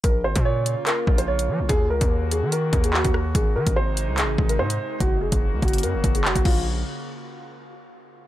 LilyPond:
<<
  \new Staff \with { instrumentName = "Grand piano" } { \time 4/4 \key bes \minor \tempo 4 = 145 bes'8 c''8 des''4 bes'8. c''16 des''4 | aes'8 bes'4 aes'8 bes'8. aes'16 ges'8 r8 | aes'8 bes'8 c''4 aes'8. bes'16 c''4 | ges'8 aes'4 ges'8 bes'8. aes'16 ges'8 f'8 |
r1 | }
  \new Staff \with { instrumentName = "Ambient pad" } { \time 4/4 \key bes \minor <des bes f'>1 | <ees bes ges'>1 | <c aes ees'>1 | <des bes ges'>2.~ <des bes ges'>8 r8 |
r1 | }
  \new Staff \with { instrumentName = "808-style bass" } { \clef bass \time 4/4 \key bes \minor bes,,8 aes,,16 bes,4 r8. bes,,4 f16 bes,,16 | ees,8 des,16 ees,4 ees8. ees,8. ees,8. | aes,,8 ees16 aes,,4 c,16. aes,,16. aes,,8 aes,8 r8 | ges,,8 f,,16 ges,,8 des,16 ges,,8 ges,16 ges,,16 ges,,8 f,,16 ges,,16 bes,,8~ |
bes,,8 r2. r8 | }
  \new DrumStaff \with { instrumentName = "Drums" } \drummode { \time 4/4 <hh bd>8. <hh bd>16 r8 hh8 <hc hh>8 bd16 hh16 r16 hh8. | <hh bd>8. <hh bd>16 r8 hh8 hh8 <hh bd>16 hh16 hc16 <hh bd>16 ss8 | <hh bd>8. <hh bd>16 r8 hh8 <hc hh>8 bd16 hh16 r16 hh8. | <hh bd>8. <hh bd>16 r8 <hh bd>32 hh32 hh32 hh32 hh8 <hh bd>16 hh16 hc16 <hh bd>16 <cymc bd>8 |
r4 r4 r4 r4 | }
>>